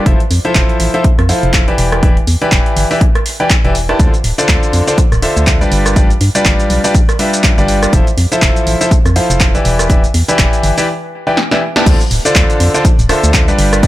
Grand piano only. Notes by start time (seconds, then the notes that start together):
0.06 F3 E4 F4 A4 C5 E5
0.45 F3 E4 F4 A4 C5 E5
0.94 F3 E4 F4 A4 C5 E5
1.29 F3 E4 F4 A4 C5 F5
1.68 E3 E4 G4 B4 D5 E5
2.03 E3 E4 G4 B4 D5 E5
2.42 E3 E4 G4 B4 D5 E5
2.91 E3 E4 G4 B4 D5 E5
3.40 E3 E4 G4 B4 D5 G5
3.64 E3 E4 G4 B4 D5 E5
3.89 E4 G4 B4 D5 A5
4.00 D3 D4 F4 A4 C5
4.38 D3 D4 F4 A4 C5 D5
4.87 D3 D4 F4 A4 C5 D5
5.22 D3 D4 F4 A4 C5 E5
5.61 G3 D4 F4 G4 B4 D5
5.96 G3 D4 F4 G4 B4 D5
6.35 G3 D4 F4 G4 B4 D5
6.84 G3 D4 F4 G4 B4 D5
7.19 G3 D4 F4 G4 B4 E5
7.58 G3 D4 F4 G4 B4 D5
7.93 F3 E4 F4 A4 C5 E5
8.32 F3 E4 F4 A4 C5 E5
8.81 F3 E4 F4 A4 C5 E5
9.16 F3 E4 F4 A4 C5 F5
9.55 E3 E4 G4 B4 D5 E5
9.90 E3 E4 G4 B4 D5 E5
10.28 E3 E4 G4 B4 D5 E5
10.78 E3 E4 G4 B4 D5 E5
11.27 E3 E4 G4 B4 D5 G5
11.51 E3 E4 G4 B4 D5 E5
11.76 E4 G4 B4 D5 A5
11.86 D3 D4 F4 A4 C5 D5
12.25 D3 D4 F4 A4 C5 D5
12.74 D3 D4 F4 A4 C5 D5
13.09 D3 D4 F4 A4 C5 E5
13.48 G3 D4 F4 G4 B4 D5
13.83 G3 D4 F4 G4 B4 D5